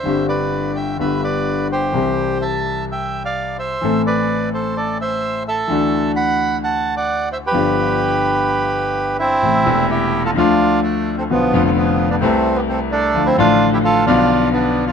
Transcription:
<<
  \new Staff \with { instrumentName = "Bandoneon" } { \time 4/4 \key g \mixolydian \tempo 4 = 129 <c'' e''>8 <b' d''>4 <e'' g''>8 <b' e''>8 <b' d''>4 <g' c''>8~ | <g' c''>4 <e'' a''>4 <e'' g''>8. <d'' f''>8. <c'' e''>8~ | <c'' e''>8 <b' d''>4 <a' c''>8 <a' d''>8 <c'' e''>4 <a' e''>8~ | <a' e''>4 <fis'' b''>4 <fis'' a''>8. <d'' fis''>8. <c'' e''>16 <g' b'>16~ |
<g' b'>2.~ <g' b'>8 <c' e'>8~ | \key a \minor <c' e'>4 <e' g'>8. <f' a'>16 <d' f'>4 <a d'>8. <a c'>16 | <f b>8. <f a>16 <f b>8. <b d'>16 <a c'>8. <g b>16 <a c'>8 <a d'>8~ | <a d'>16 <c' e'>16 <d' f'>8. <e' g'>16 <f' a'>8 <d' f'>4 <b d'>8. <d' f'>16 | }
  \new Staff \with { instrumentName = "Grand piano" } { \clef bass \time 4/4 \key g \mixolydian <g,, g, d g c' g'>2 <g,, g, d g b g'>2 | <c, c e g c' g'>1 | <a,, a, e a c' a'>1 | <d, d e a d' fis'>1 |
<g,, g, f b d' g'>1 | \key a \minor <a,, a, c e a e'>8 <e,, e, c e a e'>4. <d, d f a f'>2 | <b,, b, d f b f'>8 <f,, f, d f b f'>4. <c, c a e' b'>2 | <d, d f a f'>8 <a,, a, d f a f'>4. <b,, b, d f b f'>2 | }
>>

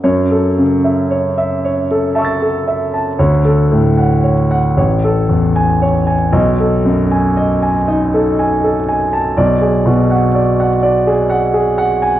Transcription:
<<
  \new Staff \with { instrumentName = "Grand piano" } { \time 6/8 \key fis \dorian \tempo 4. = 39 << { r2 <a'' cis''' e''' a'''>4 | r2. | r2. | r2. | } \\ { cis''16 a'16 cis16 e''16 cis''16 e''16 cis''16 a'16 e''16 a'16 e''16 a''16 | cis''16 a'16 a,16 fis''16 cis''16 fis''16 cis''16 a'16 e,16 gis''16 cis''16 gis''16 | dis''16 a'16 fis,16 gis''16 dis''16 gis''16 dis''16 a'16 gis''16 a'16 gis''16 a''16 | d''16 gis'16 b,16 fis''16 d''16 fis''16 d''16 gis'16 fis''16 gis'16 fis''16 gis''16 | } >> }
  \new Staff \with { instrumentName = "Grand piano" } { \clef bass \time 6/8 \key fis \dorian fis,2. | d,4. a,,4. | b,,4. dis'4. | b,,2. | }
>>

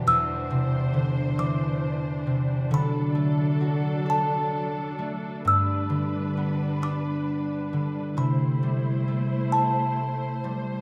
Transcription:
<<
  \new Staff \with { instrumentName = "Music box" } { \time 6/8 \key c \lydian \tempo 4. = 44 e'''4. d'''4. | b''4. a''4 r8 | e'''4. d'''4. | b''4 r8 a''4 r8 | }
  \new Staff \with { instrumentName = "String section" } { \time 6/8 \key c \lydian << { <e c''>2. | <fis a'>2. | <g b'>2. | <a c''>2. | } \\ { d'2.~ | d'2.~ | d'2. | e'2. | } >> }
  \new Staff \with { instrumentName = "Harp" } { \clef bass \time 6/8 \key c \lydian e,8 c8 d8 e4 c8 | d8 a8 fis'8 a'4 a8 | g,8 d8 b8 d'4 d8 | c8 g8 a8 e'4 g8 | }
>>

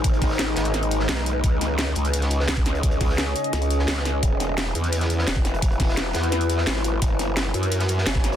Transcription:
<<
  \new Staff \with { instrumentName = "Ambient pad" } { \time 4/4 \key e \lydian \tempo 4 = 172 <gis dis' ais'>1 | <cis' gis' dis''>1~ | <cis' gis' dis''>1 | <e' b' fis''>1~ |
<e' b' fis''>1 | <fis' cis'' gis''>1 | }
  \new Staff \with { instrumentName = "Wobble bass" } { \clef bass \time 4/4 \key e \lydian r1 | r1 | r2 cis,4 r4 | r1 |
r1 | r1 | }
  \new Staff \with { instrumentName = "Wobble bass" } { \clef bass \time 4/4 \key e \lydian gis,,8 gis,,4 gis,,4. b,,4 | cis,4. cis,4. cis,4~ | cis,8 cis,4 r4. cis,4 | e,,4. e,4. e,,4~ |
e,,8 e,,4 e,4. gis,,4 | fis,,4. fis,4. fis,,4 | }
  \new DrumStaff \with { instrumentName = "Drums" } \drummode { \time 4/4 <hh bd>16 hh16 <hh hho bd sn>16 sn16 <hh sn>8 <hh sn>16 hh16 <hh sn>16 hh16 hh16 sn16 <hh sn>16 sn16 hh8 | <hh bd>8 <hh sn>8 <hh sn>8 hh16 hh16 hh16 <hh sn>16 hh16 sn16 <hh sn>16 bd16 <hh sn>16 hh16 | <hh bd>16 hh16 <hh hho bd sn>16 sn16 <hh sn>8 hh16 hh16 <hh sn>16 hh16 hh16 sn16 <hh sn>16 sn16 <hh sn>8 | <hh bd>8 <hh sn>8 <hh sn>8 hh16 hh16 hh16 <hh sn>16 hh16 sn16 <hh sn>16 bd16 <hh sn>16 hh16 |
<hh bd>16 hh16 <hh hho bd sn>16 sn16 <hh sn>8 <hh sn>16 hh16 <hh sn>16 hh16 hh16 sn16 <hh sn>16 sn16 hh8 | <hh bd>8 <hh sn>8 <hh sn>8 hh16 hh16 hh16 <hh sn>16 hh16 sn16 <hh sn>16 <bd sn>16 <hh sn>16 hh16 | }
>>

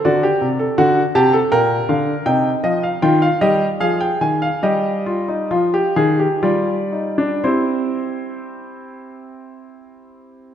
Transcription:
<<
  \new Staff \with { instrumentName = "Grand piano" } { \time 3/4 \key c \minor \tempo 4 = 72 << { d''4 fis''8 a''8 g''8 f''8 | g''8 ees''16 f''16 g''16 f''16 ees''8 f''16 g''16 aes''16 f''16 | ees''2 d''4 | <g' c''>2. | } \\ { fis'16 g'8 a'16 fis'8 g'16 a'16 bes'4 | ees'4 f'8 g'8 aes'4 | g'8 f'16 ees'16 f'16 g'16 aes'16 g'16 f'8 ees'16 d'16 | e'2. | } >> }
  \new Staff \with { instrumentName = "Grand piano" } { \clef bass \time 3/4 \key c \minor d8 c8 d8 c8 bes,8 d8 | c8 f8 ees8 g8 f8 ees8 | g4 f8 ees8 g4 | c'2. | }
>>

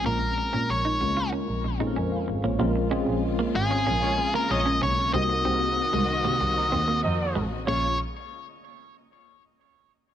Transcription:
<<
  \new Staff \with { instrumentName = "Lead electric guitar" } { \time 4/4 \key bes \minor \tempo 4 = 95 bes'4 des''4 r2 | r4. aes'4~ aes'16 bes'16 ees''8 des''8 | ees''2. r4 | des''8 r2. r8 | }
  \new Staff \with { instrumentName = "Horn section" } { \time 4/4 \key bes \minor r1 | r2 r16 <aes f' des''>16 r8 <aes f' des''>8 r8 | r2 r16 <c' bes' ees''>16 r8 <c' bes' ees''>8. r16 | <aes f' des''>8 r2. r8 | }
  \new Staff \with { instrumentName = "Tine electric piano" } { \time 4/4 \key bes \minor << { r2. <c'' aes''>16 <aes' f''>8 <f' des''>16~ | <f' des''>16 r2. r8. | r1 | r1 | } \\ { <aes c' des' f' bes'>4 r8 <aes bes des' f' bes'>8. r8 <aes c' des' f' a' bes'>8. r8 | <aes c' des' f' bes'>16 r16 <aes c' des' f' aes'>4~ <aes c' des' f' aes'>16 r2 r16 | <bes c' ees' ges' bes'>16 r16 <bes c' ees' ges' aes' bes'>4~ <bes c' ees' ges' aes' bes'>16 r2 r16 | <bes des' f' aes' des''>8 r2. r8 | } >> }
  \new Staff \with { instrumentName = "Clean electric guitar" } { \time 4/4 \key bes \minor bes16 r8 des'16 r16 ees'16 r16 f'16 des'16 r8 ees'16 des'16 r8 bes16 | bes16 r16 des'16 r8 bes16 r16 des'16 des'16 r8 bes16 r16 des'16 des'16 r16 | c'16 r16 c'16 r8 aes16 r16 bes16 r8 c'16 bes16 r8 aes16 r16 | bes8 r2. r8 | }
  \new Staff \with { instrumentName = "String section" } { \time 4/4 \key bes \minor << { r1 | <des aes f'>1 | <ees c' ges'>1 | <des aes bes des' f'>8 r2. r8 | } \\ { r1 | bes1~ | bes1 | r1 | } >> }
  \new Staff \with { instrumentName = "Double bass" } { \clef bass \time 4/4 \key bes \minor bes,,8 r16 bes,16 bes,,8 des,8 r16 bes,,16 bes,,16 bes,16 f,16 r16 aes,,16 a,,16 | bes,,8 r16 bes,,16 r8 aes,,8 bes,,8 r8 bes,,8 ces,8 | c,8 c,8 r16 c,16 r16 c16 c,8 ees,8 f,8 a,,8 | bes,,8 r2. r8 | }
>>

